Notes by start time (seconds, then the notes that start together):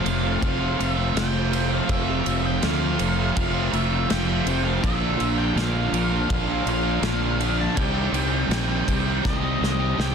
Already playing: F2 C3 F3 A3 C4 F4 F5
0.04 F1 F3 A3 C4 F4, muted overdriven electric guitar stroke, ride
0.22 F3 A3 C4 F4
0.41 F1 F2 C3 F3 A3 C4 F4 F5, kick, ride
0.60 A3 C4 F4
0.77 F1 F3 A3 C4 F4 E5, ride
0.97 A3 C4 F4
1.15 F1 F2 C3 F3 A3 C4 F4 G5, snare, ride
1.32 F3 A3 C4 F4
1.52 F3 A3 C4 F4, ride
1.70 F3 A3 C4 F4 F5
1.86 F1 F2 F3 A3 C4 F4, kick, ride
1.90 C3 F3 A3 C4 F4 E5
2.25 F1 F3 A3 C4 F4, ride
2.43 A3 C4 F4 G5
2.47 F3
2.61 D2 F2 C3 F3 A3 F5, snare, ride
2.65 C4 F4
2.81 F3 A3 C4 F4
2.97 F1 F3 A3 C4 F4, muted overdriven electric guitar stroke, ride
3.18 F3 A3 C4 F4
3.36 F1 F2 C3 F3 A3 C4 F4 F5, kick, ride
3.53 A3 C4 F4
3.73 F1 F3 A3 C4 F4 E5, ride
3.89 A3 C4 F4
4.07 F2 C3 F3 A3 C4 G5, snare, ride
4.11 F1 F4
4.26 F3 A3 C4 F4
4.44 F1 F3 A3 C4 F4, ride
4.62 F3 A3 C4 F4 F5
4.81 A#1 A#2 D3 F3 A#3 D4 F4 E5, kick, ride
5.19 A#1 D3 F3 A#3 D4 F4, ride
5.36 A#3 D4 F4 G5
5.54 A#1 A#2 D3 A#3 D4 F4 F5, snare, ride
5.73 D4 F4
5.78 A#3
5.92 A#1 D3 F3 A#3 D4 F4, muted overdriven electric guitar stroke, ride
6.11 A#3 D4 F4
6.28 A#1 A#2 F3 A#3 D4 F4, kick, ride
6.34 F5
6.48 A#3 D4 F4
6.66 A#1 D3 A#3 D4 F5, ride
6.70 F4
6.83 A#3 D4 F4
7.02 A#1 A#2 D3 F3 A#3, snare, ride
7.06 D4 F4
7.21 A#3 D4 F4
7.39 D3 A#3 D4 F4, ride
7.57 A#3 D4 F4 A5
7.75 C2 C3 D#3 G3 C4 D#4 G4 G5, kick, ride
7.80 G4
8.12 C2 D#3 G3 C4, ride
8.17 G4
8.31 C4 G4
8.35 G3
8.48 A#1 C3 D#3 G3, snare, ride
8.53 C4 G4
8.68 G3 C4 G4
8.87 C2 D#3 G3 C4 G4, muted overdriven electric guitar stroke, kick, ride
9.06 G3 C4 G4
9.24 C2 C3 G3 C4 D#4 G4 D#5, kick, snare
9.42 G3 C4 G4
9.61 C2 D#3 G3 C4 G4 D#5, snare
9.79 G3 C4 G4
9.98 C2 C3 D#3 G3 C4 G4 G5, snare